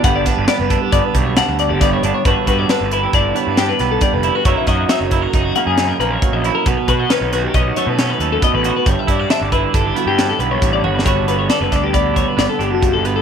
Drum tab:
HH |x--x--x--x--x--x--x--x--x--x--|x--x--x--x--x--x--x--x--x--x--|x--x--x--x--x--x--x--x--x--x--|x--x--x--x--x--x--x--x--x--x--|
SD |---o--o-----------o-----o-----|------o-----------o--o--------|---o--o-----------o-----------|------o--o--------o-----------|
T1 |------------------------------|------------------------------|------------------------------|------------------------------|
BD |o--o-----o--o--o--------o-----|o--o--------o-----------o-----|o--o-----o--o-----------o-----|o--o--------o-----------o-----|

HH |x--x--x--x--x--x--x--x--x-----|x--x--x--x--x--x--x--x--x--x--|
SD |------o-----------o-----o----o|------o--o--------o-----------|
T1 |---------------------------o--|------------------------------|
BD |o--o-----o--o-----------o-----|o--------o--o--o--------o-----|